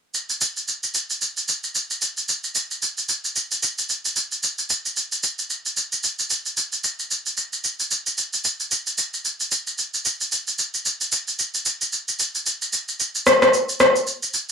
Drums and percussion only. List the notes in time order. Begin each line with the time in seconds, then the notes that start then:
0.14 shaker
0.30 shaker
0.41 shaker
0.57 shaker
0.68 shaker
0.83 shaker
0.94 shaker
1.10 shaker
1.21 shaker
1.37 shaker
1.48 shaker
1.64 shaker
1.75 shaker
1.90 shaker
2.02 shaker
2.17 shaker
2.29 shaker
2.44 shaker
2.55 shaker
2.71 shaker
2.82 shaker
2.98 shaker
3.09 shaker
3.25 shaker
3.36 shaker
3.51 shaker
3.63 shaker
3.78 shaker
3.89 shaker
4.05 shaker
4.16 shaker
4.32 shaker
4.43 shaker
4.59 shaker
4.70 shaker
4.86 shaker
4.97 shaker
5.12 shaker
5.23 shaker
5.39 shaker
5.50 shaker
5.66 shaker
5.77 shaker
5.92 shaker
6.04 shaker
6.19 shaker
6.30 shaker
6.46 shaker
6.57 shaker
6.72 shaker
6.84 shaker
6.99 shaker
7.11 shaker
7.26 shaker
7.37 shaker
7.53 shaker
7.64 shaker
7.80 shaker
7.91 shaker
8.06 shaker
8.18 shaker
8.33 shaker
8.44 shaker
8.60 shaker
8.71 shaker
8.87 shaker
8.98 shaker
9.14 shaker
9.25 shaker
9.40 shaker
9.51 shaker
9.67 shaker
9.78 shaker
9.94 shaker
10.05 shaker
10.21 shaker
10.32 shaker
10.47 shaker
10.59 shaker
10.74 shaker
10.85 shaker
11.01 shaker
11.12 shaker
11.28 shaker
11.39 shaker
11.54 shaker
11.66 shaker
11.81 shaker
11.92 shaker
12.08 shaker
12.19 shaker
12.35 shaker
12.46 shaker
12.62 shaker
12.73 shaker
12.88 shaker
13.00 shaker
13.15 shaker
13.26 cross-stick, shaker
13.42 cross-stick, shaker
13.53 shaker
13.69 shaker
13.80 cross-stick, shaker
13.96 shaker
14.07 shaker
14.23 shaker
14.34 shaker